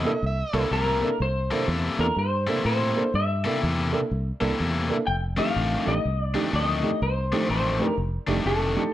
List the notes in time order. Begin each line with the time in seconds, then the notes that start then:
Already playing: C3 A#3 E4 A4 D#5
0.05 A#3 D4 E4 A4
0.23 C2 E5
0.53 C2 C3 A#3 D4 E4 A4
0.70 C2 C3 A#3 E4 A4 A#4
1.02 A#3 D4 E4 A4
1.20 C2 C5
1.51 C3 A#3 D4 E4 A4
1.68 E2 C3 A#3 E4 A4
1.98 E2 A#3 D4 E4 A4 A#4
2.16 G2 C5
2.47 C3 A#3 D4 E4 A4
2.65 A2 C3 A#3 E4 A4 C5
2.96 A#3 D4 E4 A4
3.14 G2 E5
3.44 C3 A#3 D4 E4 A4
3.61 E2 C3 A#3 E4 A4
3.92 A#3 D4 E4 A4
4.11 C2
4.40 C2 C3 A#3 D4 E4 A4
4.59 E2 C3 A#3 E4 A4
4.89 A#3 D4 E4 A4
5.07 F1 G5
5.37 F2 D#3 A3 D4 D#4 G4 F5
5.55 A1 F2 D#3 A3 D4
5.86 A1 A3 D4 D#4 G4 D#5
6.05 C2
6.21 D5
6.34 F2 D#3 A3 D4 D#4 G4
6.53 D2 F2 D#3 A3 D4 D#5
6.83 A3 D4 D#4 G4
7.02 C2 C5
7.32 F2 D#3 A3 D4 D#4 G4
7.48 A1 F2 D#3 A3 D4 C5
7.79 A3 D4 D#4 G4
7.98 F1
8.27 F1 F2 D#3 A3 D4 D#4 G4
8.44 F1 F2 D#3 A3 D4 A4
8.76 A3 D4 D#4 G4